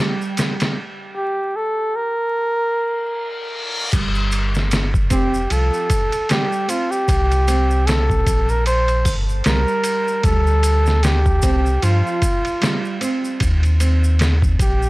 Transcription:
Already playing: nylon-string guitar G3, muted trumpet G4
0.21 maracas
0.37 snare, ride, maracas
0.60 snare, ride, maracas
1.16 muted trumpet G4
1.56 muted trumpet A4
1.96 muted trumpet A#4
2.35 reverse cymbal
3.92 sub bass G1, nylon-string guitar G3, kick, crash, ride, maracas
4.15 maracas
4.32 ride, maracas
4.55 snare, maracas
4.71 snare, ride, maracas
4.94 kick, maracas
5.10 sub bass F1, nylon-string guitar C4, muted trumpet G4, kick, ride, maracas
5.34 maracas
5.50 sub bass C2, nylon-string guitar F3, muted trumpet A4, ride, maracas
5.74 maracas
5.90 kick, ride, maracas
6.12 ride, maracas
6.29 nylon-string guitar G3, muted trumpet G4, snare, ride, maracas
6.53 maracas
6.68 nylon-string guitar C4, muted trumpet F4, ride, maracas
6.91 muted trumpet G4, maracas
7.08 sub bass C2, kick, ride, maracas
7.32 ride, maracas
7.47 nylon-string guitar C4, ride, maracas
7.71 maracas
7.86 muted trumpet A4, snare, ride, maracas
8.10 kick, maracas
8.27 sub bass A#1, kick, ride, maracas
8.49 muted trumpet A#4, maracas
8.66 muted trumpet C5, ride, maracas
8.88 ride, maracas
9.05 sub bass G1, kick, open hi-hat, maracas
9.29 maracas
9.44 sub bass C2, nylon-string guitar G3, muted trumpet A#4, snare, ride, maracas
9.68 maracas
9.84 ride, maracas
10.08 maracas
10.23 sub bass D2, nylon-string guitar G3, muted trumpet A4, kick, ride, maracas
10.47 maracas
10.63 ride, maracas
10.86 snare, maracas
11.03 muted trumpet G4, snare, ride, maracas
11.26 kick, maracas
11.42 sub bass C2, nylon-string guitar C4, kick, ride, maracas
11.66 maracas
11.82 sub bass G2, nylon-string guitar F3, muted trumpet F4, ride, maracas
12.07 maracas
12.22 kick, ride, maracas
12.45 ride, maracas
12.61 nylon-string guitar G3, snare, ride, maracas
12.85 maracas
13.01 nylon-string guitar C4, ride, maracas
13.25 maracas
13.40 sub bass D#2, kick, ride, maracas
13.63 ride, maracas
13.80 nylon-string guitar C4, ride, maracas
14.04 maracas
14.19 snare, ride, maracas
14.42 kick, maracas
14.59 sub bass A#1, muted trumpet G4, kick, ride, maracas
14.82 maracas

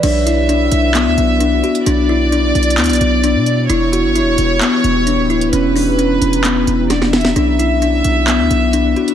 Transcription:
0.03 808-style bass B1, ambient pad B3 D4 F#4, kalimba D4, violin section E5, closed hi-hat, crash
0.26 kalimba E4, closed hi-hat
0.49 kalimba D4, closed hi-hat
0.72 808-style bass B1, closed hi-hat
0.95 kalimba B3, clap, closed hi-hat
1.06 808-style bass D2
1.18 808-style bass B1, closed hi-hat
1.40 kalimba D4, closed hi-hat
1.64 kalimba F#4, closed hi-hat
1.75 closed hi-hat
1.86 808-style bass B1, kalimba D4, ambient pad E4, violin section D5, closed hi-hat
2.09 kalimba E4
2.32 kalimba D4, closed hi-hat
2.55 808-style bass B1, closed hi-hat
2.63 closed hi-hat
2.70 closed hi-hat
2.78 808-style bass D2, kalimba B3, clap, closed hi-hat
2.84 closed hi-hat
2.86 808-style bass B1, closed hi-hat
2.89 closed hi-hat
2.93 closed hi-hat
2.95 closed hi-hat
3.01 808-style bass B1, closed hi-hat
3.24 kalimba D4, closed hi-hat
3.35 808-style bass B2
3.46 closed hi-hat
3.69 808-style bass E1, ambient pad E3 G4 B4, kalimba E4, violin section C#5, closed hi-hat
3.93 kalimba F#4, closed hi-hat
4.04 808-style bass G1
4.15 kalimba E4, closed hi-hat
4.21 808-style bass E1
4.38 808-style bass E1, closed hi-hat
4.61 kalimba B3, clap, closed hi-hat
4.84 808-style bass E1, closed hi-hat
5.07 kalimba D4, closed hi-hat
5.18 808-style bass D1
5.30 kalimba E4, closed hi-hat
5.41 closed hi-hat
5.53 808-style bass E1, kalimba C#4, violin section B4, ambient pad A#5, closed hi-hat
5.76 kalimba D4, open hi-hat
5.99 kalimba C#4, closed hi-hat
6.22 808-style bass E1, closed hi-hat
6.33 closed hi-hat
6.44 kalimba B3, clap, closed hi-hat
6.67 808-style bass E1, closed hi-hat
6.89 kalimba D4, violin section D5, snare, closed hi-hat
7.02 snare
7.13 violin section E5, snare, closed hi-hat
7.21 snare, closed hi-hat
7.28 closed hi-hat
7.36 808-style bass B1, ambient pad B3 D4 F#4, kalimba D4, violin section E5, closed hi-hat
7.59 kalimba E4, closed hi-hat
7.82 kalimba D4, closed hi-hat
8.04 808-style bass B1, closed hi-hat
8.28 kalimba B3, clap, closed hi-hat
8.39 808-style bass D2
8.51 808-style bass B1, closed hi-hat
8.73 kalimba D4, closed hi-hat
8.96 kalimba F#4, closed hi-hat
9.08 closed hi-hat

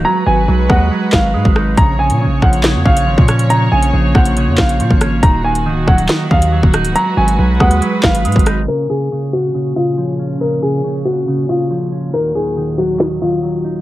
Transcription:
0.05 clean electric guitar F#3, string section G#3 F#4 B4, grand piano A#5
0.26 808-style bass G#1, clean electric guitar F#3, grand piano G#5
0.48 808-style bass B1, clean electric guitar F#3
0.69 808-style bass D#2, clean electric guitar G#3, grand piano F#5, kick, cross-stick
0.91 clean electric guitar F#3
1.12 808-style bass G#1, clean electric guitar F#3, grand piano F5, kick, snare, clap
1.34 808-style bass G#2, clean electric guitar G#3
1.45 808-style bass G#1, kick
1.56 clean electric guitar D#4, cross-stick
1.77 808-style bass A#1, clean electric guitar C#3, string section F3 A#3 C#5, grand piano A#5, kick, closed hi-hat
1.99 clean electric guitar C#3, grand piano G#5
2.10 808-style bass A#2, closed hi-hat
2.21 clean electric guitar C#3
2.26 808-style bass A#1
2.42 808-style bass A#1, clean electric guitar F3, grand piano F#5, kick, cross-stick
2.53 closed hi-hat
2.63 clean electric guitar C#3, snare, clap, closed hi-hat
2.75 808-style bass F2
2.85 808-style bass A#1, clean electric guitar C#3, grand piano F5, kick
2.97 closed hi-hat
3.07 808-style bass G#1, clean electric guitar F3
3.18 808-style bass A#2, kick
3.28 clean electric guitar C#4, cross-stick, closed hi-hat
3.39 closed hi-hat
3.50 clean electric guitar C#3, grand piano A#5, closed hi-hat
3.72 808-style bass A#1, clean electric guitar C#3, grand piano G#5
3.83 closed hi-hat
3.93 808-style bass A#1, clean electric guitar C#3
4.15 808-style bass A#1, clean electric guitar F3, grand piano F#5, kick, cross-stick
4.25 closed hi-hat
4.37 clean electric guitar C#3, closed hi-hat
4.47 808-style bass F2
4.58 808-style bass A#1, clean electric guitar C#3, grand piano F5, kick, snare, clap
4.69 closed hi-hat
4.80 808-style bass A#2, clean electric guitar F3, closed hi-hat
4.90 808-style bass G#1, kick
5.01 clean electric guitar C#4, cross-stick, closed hi-hat
5.23 808-style bass D#1, clean electric guitar D#3, string section D#3 F#4, grand piano A#5, kick, closed hi-hat
5.44 clean electric guitar D#3, grand piano G#5
5.55 closed hi-hat
5.66 808-style bass C#1, clean electric guitar D#3
5.77 808-style bass D#1
5.87 808-style bass D#1, clean electric guitar F#3, grand piano F#5, kick, cross-stick
5.98 closed hi-hat
6.09 clean electric guitar D#3, snare, clap, closed hi-hat
6.31 808-style bass D#2, clean electric guitar D#3, grand piano F5, kick
6.42 closed hi-hat
6.52 clean electric guitar F#3
6.63 808-style bass D#1, kick
6.74 clean electric guitar D#4, cross-stick, closed hi-hat
6.85 808-style bass C#1, closed hi-hat
6.95 clean electric guitar F#3, string section G#3 B4, grand piano A#5, closed hi-hat
7.17 808-style bass G#1, clean electric guitar F#3, grand piano G#5
7.28 closed hi-hat
7.39 808-style bass B1, clean electric guitar F#3
7.60 808-style bass D#2, clean electric guitar G#3, grand piano F#5, kick, cross-stick
7.71 closed hi-hat
7.82 clean electric guitar F#3, closed hi-hat
8.03 808-style bass G#1, clean electric guitar F#3, grand piano F5, kick, snare, clap
8.15 closed hi-hat
8.25 808-style bass G#2, clean electric guitar G#3, closed hi-hat
8.32 808-style bass G#1, kick, closed hi-hat
8.39 closed hi-hat
8.46 clean electric guitar D#4, cross-stick, closed hi-hat
8.68 string section A#2 C#3 C#4, clean electric guitar C#3, grand piano A#4
8.90 clean electric guitar C#3, grand piano G#4
9.01 closed hi-hat
9.12 clean electric guitar C#3
9.33 grand piano F#4
9.44 closed hi-hat
9.54 clean electric guitar C#3, closed hi-hat
9.76 clean electric guitar C#3, grand piano F4
9.87 closed hi-hat
9.97 clean electric guitar F3
10.19 clean electric guitar C#4, closed hi-hat
10.30 closed hi-hat
10.40 clean electric guitar C#3, grand piano A#4, closed hi-hat
10.62 clean electric guitar C#3, grand piano G#4
10.73 closed hi-hat
10.84 clean electric guitar C#3
11.05 grand piano F#4
11.16 closed hi-hat
11.27 clean electric guitar C#3, closed hi-hat
11.49 clean electric guitar C#3, grand piano F4
11.60 closed hi-hat
11.70 clean electric guitar F3, closed hi-hat
11.92 clean electric guitar C#4, closed hi-hat
12.13 string section D#2 F#3, clean electric guitar D#3, grand piano A#4, closed hi-hat
12.35 clean electric guitar D#3, grand piano G#4
12.46 closed hi-hat
12.57 clean electric guitar D#3
12.78 clean electric guitar F#3, grand piano F#4
12.89 closed hi-hat
12.99 clean electric guitar D#3, snare, clap
13.22 clean electric guitar D#3, grand piano F4
13.33 closed hi-hat
13.43 clean electric guitar F#3
13.64 clean electric guitar D#4, closed hi-hat
13.75 closed hi-hat

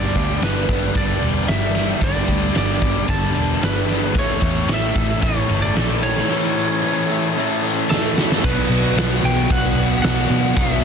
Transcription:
Already playing: picked electric bass G1, overdriven electric guitar G2 D3 G3 B3 D4 G4, lead electric guitar D5
0.15 picked electric bass D2, overdriven electric guitar G3 B3 D4 G4, kick, ride
0.39 picked electric bass G1, overdriven electric guitar D3 G3 B3 D4, ride
0.43 overdriven electric guitar G4, lead electric guitar B4, snare
0.68 picked electric bass G1, overdriven electric guitar G3 B3 D4 G4, kick, ride
0.93 picked electric bass G1, overdriven electric guitar G2 D3 G3 B3 D4 G4, lead electric guitar D5, kick, ride
1.21 picked electric bass E1, overdriven electric guitar G3 B3 D4 G4, ride
1.48 picked electric bass G1, overdriven electric guitar D3 G3 B3 D4 G4, lead electric guitar E5, snare, ride
1.74 overdriven electric guitar G3 B3 D4 G4, snare, ride
2.00 picked electric bass G1, overdriven electric guitar G2 D3 G3 B3 D4 G4, kick, ride
2.04 lead electric guitar D5
2.28 picked electric bass D2, overdriven electric guitar G3 B3 D4 G4, kick, ride
2.52 overdriven electric guitar D3 G3 B3 D4 G4, snare, ride
2.56 picked electric bass G1, lead electric guitar D5
2.81 picked electric bass G1, overdriven electric guitar G3 B3 D4 G4, kick, ride
3.08 picked electric bass G1, overdriven electric guitar G2 D3 G3 B3 D4 G4, lead electric guitar A5, kick, ride
3.34 picked electric bass E1, overdriven electric guitar G3 B3 D4 G4, ride
3.61 picked electric bass G1, overdriven electric guitar D3 G3 B3 D4 G4, lead electric guitar B4, snare, ride
3.88 overdriven electric guitar G3 B3 D4 G4, snare, ride
4.15 picked electric bass A1, overdriven electric guitar A2 E3 A3 C#4 E4 A4, kick, ride
4.19 lead electric guitar C#5
4.40 picked electric bass E2, overdriven electric guitar A3 C#4 E4 A4, kick, ride
4.68 picked electric bass A1, overdriven electric guitar E3 A3 C#4 E4 A4, snare, ride
4.74 lead electric guitar E5
4.95 picked electric bass A1, overdriven electric guitar A3 C#4 E4 A4, kick, ride
5.22 picked electric bass A1, overdriven electric guitar A2 E3 A3 C#4 A4, lead electric guitar C#5, kick, ride
5.49 picked electric bass G1, overdriven electric guitar A3 C#4 A4, ride
5.62 lead electric guitar D5
5.75 picked electric bass A#1, overdriven electric guitar E3 A3 C#4 E4 A4, snare, ride
6.00 overdriven electric guitar E4 A4, lead electric guitar C#5, ride
6.05 overdriven electric guitar A3 C#4
6.17 snare
6.29 overdriven electric guitar A2 E3 A3 C#4 E4 A4
6.54 overdriven electric guitar C#4 E4 A4
6.59 overdriven electric guitar A3
6.84 overdriven electric guitar E3 A3 C#4 E4 A4
7.07 overdriven electric guitar E4 A4
7.11 overdriven electric guitar A3 C#4
7.36 overdriven electric guitar A2 E3 A3 C#4 A4
7.64 overdriven electric guitar A3 C#4 A4
7.90 overdriven electric guitar E3 A3 C#4 E4 A4, lead electric guitar A4, snare
8.16 overdriven electric guitar A3 C#4 E4 A4, snare
8.32 snare
8.43 picked electric bass B1, overdriven electric guitar B2 F#3 B3 D4 F#4, lead electric guitar B4, kick, crash
8.69 picked electric bass B1
8.95 picked electric bass B1, overdriven electric guitar F#3 B3 D4 F#4, snare, tambourine, crash
9.23 picked electric bass B1, lead electric guitar G5
9.49 picked electric bass B1, overdriven electric guitar B2 F#3 B3 D4 F#4, lead electric guitar F#5, kick, crash
9.75 picked electric bass B1, overdriven electric guitar B3 D4 F#4
10.01 picked electric bass B1, overdriven electric guitar F#3 B3 D4, lead electric guitar F#5, snare, tambourine, crash
10.05 overdriven electric guitar F#4
10.30 picked electric bass B2
10.55 picked electric bass B1, overdriven electric guitar B2 F#3 B3 D4 F#4, lead electric guitar E5, kick, crash

